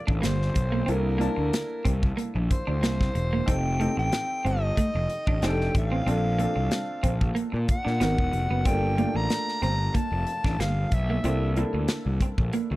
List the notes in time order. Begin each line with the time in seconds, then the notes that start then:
Already playing: A#3 D4 F4 A4
0.07 A1 D4, kick
0.19 A#3 B4
0.23 G1 C5, snare, closed hi-hat
0.42 snare
0.54 B1, muted clean electric guitar stroke, kick, closed hi-hat
0.72 A#3
0.86 C2 A#3 C4 D4 E4 A4, closed hi-hat
0.90 A#4
1.18 A#3 D4 E4 A5, closed hi-hat
1.36 D2, muted clean electric guitar stroke
1.53 snare, closed hi-hat
1.85 C2 C4, kick, closed hi-hat
2.03 kick
2.17 A#3, closed hi-hat
2.35 A#1, muted clean electric guitar stroke
2.51 C5, kick, closed hi-hat
2.67 D2 D4
2.83 C2 A#3, snare, closed hi-hat
3.01 kick, snare
3.15 E1, muted clean electric guitar stroke, closed hi-hat
3.33 A#3
3.46 F1 C4 D#4 G4 A4 G5, kick, closed hi-hat
3.80 A3 C4 D#4 G4 A4, closed hi-hat
3.97 A1 G5, muted clean electric guitar stroke
4.12 snare, closed hi-hat
4.45 G1 C4 D#5, closed hi-hat
4.77 A3, kick, closed hi-hat
4.95 F1, muted clean electric guitar stroke
5.10 closed hi-hat
5.27 A1 D4, kick
5.42 F1 C4 D4 D#4 G4 G#4 G5, snare, closed hi-hat
5.49 A4
5.61 snare
5.75 A1 F5, muted clean electric guitar stroke, kick, closed hi-hat
5.92 C4
6.06 A#1 C4 D4 F4 A4, closed hi-hat
6.38 A#3 C4 D4 F4 A4, closed hi-hat
6.56 C2, muted clean electric guitar stroke
6.71 snare, closed hi-hat
7.03 A#1 C4, kick, closed hi-hat
7.21 kick
7.35 A#3, closed hi-hat
7.52 A#2, muted clean electric guitar stroke
7.68 F#5, kick, closed hi-hat
7.85 A#2 D4, snare
8.00 G#1 B3 D#4 F#4 A#4, snare, closed hi-hat
8.18 E1, kick
8.33 F1, muted clean electric guitar stroke, closed hi-hat
8.51 F#1 B3
8.65 G1 A#3 C4 D4 F4 A4 G5, kick, closed hi-hat
8.98 A3 A#3 D4 F4, closed hi-hat
9.05 A#3
9.15 A1 A#5, muted clean electric guitar stroke
9.30 snare, closed hi-hat
9.48 snare
9.62 G1 C4 A#5, closed hi-hat
9.94 A#3 A5, kick, closed hi-hat
10.12 F1, muted clean electric guitar stroke
10.27 closed hi-hat
10.44 A1 D4, kick, snare
10.59 G1 A#3 F5, snare, closed hi-hat
10.92 B1 E5, muted clean electric guitar stroke, kick, closed hi-hat
11.10 A#3
11.23 C2 A#3 C4 D4 E4 A4, closed hi-hat
11.56 A#3 D4 E4 A4, closed hi-hat
11.74 D2, muted clean electric guitar stroke
11.88 snare, closed hi-hat
12.06 C2
12.21 C4, kick, closed hi-hat
12.38 A#1, kick
12.53 A#3, closed hi-hat
12.71 D2, muted clean electric guitar stroke